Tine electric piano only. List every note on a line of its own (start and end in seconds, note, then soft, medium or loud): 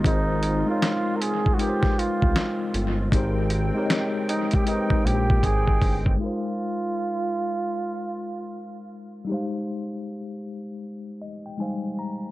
0.04 0.40 G#3 medium
0.04 0.40 D#4 medium
0.04 0.41 F4 medium
0.04 0.42 A#4 medium
0.08 0.42 C5 medium
0.66 1.20 G#3 medium
0.66 1.21 D#4 medium
0.66 1.21 F4 medium
0.66 1.22 A#4 medium
0.71 0.74 C#5 medium
0.78 1.26 D#5 medium
1.58 2.56 G#3 medium
1.58 2.56 D#4 medium
1.58 2.57 F4 medium
1.58 2.57 A#4 medium
1.63 1.69 B4 medium
1.69 2.61 C5 medium
3.12 3.48 G#3 medium
3.12 3.48 D#4 medium
3.12 3.49 G4 medium
3.12 3.50 A#4 medium
3.16 3.50 C5 loud
3.75 4.28 G#3 medium
3.75 4.28 D#4 medium
3.75 4.29 G4 medium
3.75 4.30 A#4 medium
3.79 3.82 C#5 medium
3.86 4.33 D#5 medium
4.65 5.63 G#3 medium
4.65 5.64 D#4 medium
4.65 5.64 G4 medium
4.65 5.65 A#4 medium
4.70 4.76 B4 medium
4.76 5.69 C5 medium
6.17 9.22 G#3 medium
6.17 9.23 D#4 medium
6.21 9.24 F4 medium
6.21 9.25 A#4 medium
6.26 9.27 C5 medium
9.25 9.34 G3 medium
9.25 11.54 D#4 medium
9.29 11.56 G#3 medium
9.29 11.55 G4 medium
9.29 11.56 C5 medium
9.34 11.58 F5 medium
11.22 11.44 D#5 medium
11.46 11.58 G5 medium
11.58 12.31 G3 soft
11.58 12.31 G#3 soft
11.58 12.31 D#4 soft
11.58 12.31 C5 soft
11.58 11.95 G#5 medium
11.62 12.31 F5 medium
11.99 12.31 A#5 medium